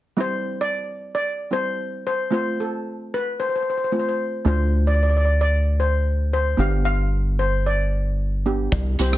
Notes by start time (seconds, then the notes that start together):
0.17 G3 C4 E4 C5
0.61 D5
1.15 D5
1.51 G3 C4 E4 C5
2.07 C5
2.31 A3 C4 F4 C5
2.60 A4
3.14 B4
3.40 C5
3.49 C5
3.56 C5
3.63 C5
3.70 C5
3.78 C5
3.84 C5
3.92 A3 C4 F4 C5
4.00 C5
4.09 C5
4.45 D2 A3 D4 F4 C5
4.87 D5
4.95 D5
5.03 D5
5.10 D5
5.17 D5
5.25 D5
5.41 D5
5.80 C5
6.33 C5
6.57 G1 B3 D4 G4 F5
6.85 F5
7.39 C5
7.66 D5
8.46 B3 D4 G4
8.72 C2, kick, closed hi-hat, cowbell
8.99 C2 C4 E4 G4 C5, closed hi-hat
9.12 C4 E4 G4, cross-stick, closed hi-hat